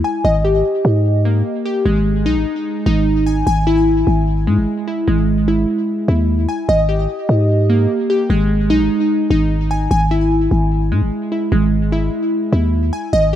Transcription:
Already playing: E4
0.04 G#5
0.25 G#1 D#5
0.45 G4
0.85 G#2
1.25 A#3
1.65 G4
1.86 G#1 G#3
2.26 B1 D#4
2.36 G#1
2.86 G#1 D#4
3.26 G#5
3.47 G#1 G#5
3.67 E4
4.07 G#1
4.47 G#2 G#3
4.57 G#1
4.88 E4
5.08 G#1 G#3
5.48 E4
6.08 D#2 E4
6.49 G#5
6.69 G#1 D#5
6.89 G4
7.29 G#2
7.70 A#3
8.10 G4
8.30 G#1 G#3
8.70 B1 D#4
8.80 G#1
9.30 G#1 D#4
9.71 G#5
9.91 G#1 G#5
10.11 E4
10.51 G#1
10.92 G#2 G#3
11.02 G#1
11.32 E4
11.52 G#1 G#3
11.92 E4
12.53 D#2 E4
12.93 G#5
13.13 G#1 D#5

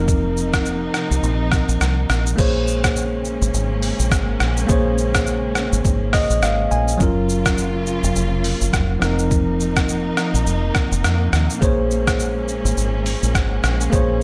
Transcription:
Already playing: F1 C3 F3 A#3 C4 D#4 A#4
0.08 kick, shaker
0.37 shaker
0.53 kick, cross-stick, shaker
0.65 shaker
0.94 cross-stick, shaker
1.11 C2, shaker
1.23 A#1, shaker
1.52 kick, cross-stick, shaker
1.69 A#1, shaker
1.81 C2, cross-stick, shaker
2.10 A#1, cross-stick, shaker
2.26 shaker
2.36 A#1 C#3 G#3 A#3 C#4 G#4 C5, kick, crash, shaker
2.41 C#5
2.67 shaker
2.84 kick, cross-stick, shaker
2.96 shaker
3.25 shaker
3.42 G#1, shaker
3.54 G#1, shaker
3.82 open hi-hat, shaker
3.99 A#1, shaker
4.11 G#1, kick, cross-stick, shaker
4.40 A#1, cross-stick, shaker
4.57 shaker
4.67 A#1 A#3 G#4 C5, kick, shaker
4.72 C#5
4.98 shaker
5.14 kick, cross-stick, shaker
5.27 shaker
5.55 cross-stick, shaker
5.73 G#1, shaker
5.85 G#1, kick, shaker
6.13 D#5, kick, cross-stick, open hi-hat, shaker
6.30 A#1, shaker
6.42 G#1 F5, cross-stick, shaker
6.71 A#1 G#5, shaker
6.88 shaker
6.98 F#1 C#3 F#3 A#3 C#4 F4, kick, shaker
7.03 A#4
7.29 shaker
7.46 kick, cross-stick, shaker
7.58 shaker
7.86 shaker
8.04 F1, shaker
8.16 F1, shaker
8.44 open hi-hat, shaker
8.61 F#1, shaker
8.73 F1, kick, cross-stick, shaker
9.00 F1 A#2 F3 C4 D#4, cross-stick, shaker
9.05 A#4
9.19 shaker
9.31 kick, shaker
9.60 shaker
9.76 kick, cross-stick, shaker
9.89 shaker
10.17 cross-stick, shaker
10.34 A#1, shaker
10.46 F1, shaker
10.75 kick, cross-stick, shaker
10.92 F1, shaker
11.04 F2, cross-stick, shaker
11.33 D#2, cross-stick, shaker
11.50 shaker
11.59 A#1 G#3 A#3 C#4 G#4 C5, kick, shaker
11.64 C#5
11.91 shaker
12.07 kick, cross-stick, shaker
12.19 shaker
12.48 shaker
12.65 G#1, shaker
12.77 G#1, shaker
13.06 open hi-hat, shaker
13.23 A#1, shaker
13.35 G#1, kick, cross-stick, shaker
13.64 A#1, cross-stick, shaker
13.81 shaker
13.90 A#1 A#3 G#4 C5, kick, shaker
13.95 C#5

